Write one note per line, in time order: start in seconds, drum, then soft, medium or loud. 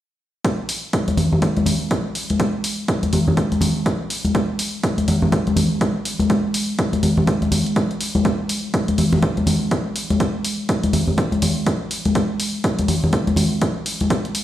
0.45 kick loud
0.45 closed hi-hat medium
0.69 open hi-hat medium
0.93 kick medium
0.93 closed hi-hat medium
1.08 closed hi-hat soft
1.08 high conga medium
1.17 open hi-hat medium
1.17 low conga medium
1.32 low conga medium
1.42 kick loud
1.42 closed hi-hat medium
1.57 closed hi-hat soft
1.57 high conga medium
1.66 open hi-hat loud
1.66 low conga medium
1.91 kick loud
1.91 closed hi-hat medium
2.15 open hi-hat medium
2.30 closed hi-hat soft
2.30 high conga medium
2.40 kick loud
2.40 closed hi-hat medium
2.64 open hi-hat loud
2.88 kick loud
2.88 closed hi-hat medium
3.03 closed hi-hat soft
3.03 high conga medium
3.13 open hi-hat medium
3.13 low conga medium
3.28 low conga medium
3.37 kick loud
3.37 closed hi-hat medium
3.52 closed hi-hat soft
3.52 high conga medium
3.61 open hi-hat loud
3.61 low conga medium
3.86 kick loud
3.86 closed hi-hat medium
4.10 open hi-hat medium
4.25 closed hi-hat soft
4.25 high conga medium
4.35 kick loud
4.35 closed hi-hat medium
4.59 open hi-hat loud
4.83 kick loud
4.83 closed hi-hat medium
4.98 closed hi-hat soft
4.98 high conga medium
5.08 open hi-hat medium
5.08 low conga medium
5.22 low conga medium
5.32 kick loud
5.32 closed hi-hat medium
5.47 closed hi-hat soft
5.47 high conga medium
5.56 open hi-hat loud
5.56 low conga medium
5.81 kick loud
5.81 closed hi-hat medium
6.05 open hi-hat medium
6.19 closed hi-hat soft
6.19 high conga medium
6.30 kick loud
6.30 closed hi-hat medium
6.54 open hi-hat loud
6.79 kick loud
6.79 closed hi-hat medium
6.93 closed hi-hat soft
6.93 high conga medium
7.03 open hi-hat medium
7.03 low conga medium
7.17 low conga medium
7.27 kick loud
7.27 closed hi-hat medium
7.42 closed hi-hat soft
7.42 high conga medium
7.52 open hi-hat medium
7.52 low conga medium
7.66 closed hi-hat soft
7.76 kick loud
7.76 closed hi-hat medium
7.91 closed hi-hat soft
8.01 open hi-hat medium
8.15 closed hi-hat soft
8.15 high conga medium
8.25 kick loud
8.25 closed hi-hat medium
8.49 open hi-hat medium
8.74 kick loud
8.74 closed hi-hat medium
8.88 closed hi-hat soft
8.88 high conga medium
8.98 open hi-hat medium
8.98 low conga medium
9.13 low conga medium
9.22 kick loud
9.22 closed hi-hat medium
9.37 closed hi-hat soft
9.37 high conga medium
9.47 open hi-hat loud
9.47 low conga medium
9.71 kick loud
9.71 closed hi-hat medium
9.96 open hi-hat medium
10.10 closed hi-hat soft
10.10 high conga medium
10.20 kick loud
10.20 closed hi-hat medium
10.45 open hi-hat medium
10.69 kick medium
10.69 closed hi-hat medium
10.83 closed hi-hat soft
10.83 high conga medium
10.93 open hi-hat medium
10.93 low conga medium
11.07 low conga medium
11.18 kick loud
11.18 closed hi-hat medium
11.32 closed hi-hat soft
11.32 high conga medium
11.42 open hi-hat medium
11.42 low conga medium
11.66 kick medium
11.66 closed hi-hat medium
11.91 open hi-hat medium
12.05 closed hi-hat soft
12.05 high conga medium
12.15 kick loud
12.15 closed hi-hat medium
12.40 open hi-hat medium
12.64 kick loud
12.64 closed hi-hat medium
12.79 closed hi-hat medium
12.79 high conga medium
12.88 open hi-hat medium
12.88 low conga medium
13.04 low conga medium
13.13 kick loud
13.13 closed hi-hat medium
13.27 closed hi-hat soft
13.27 high conga medium
13.36 open hi-hat medium
13.36 low conga medium
13.62 kick loud
13.62 closed hi-hat medium
13.86 open hi-hat medium
14.01 closed hi-hat soft
14.01 high conga medium
14.10 kick loud
14.10 closed hi-hat medium
14.25 closed hi-hat soft
14.35 open hi-hat medium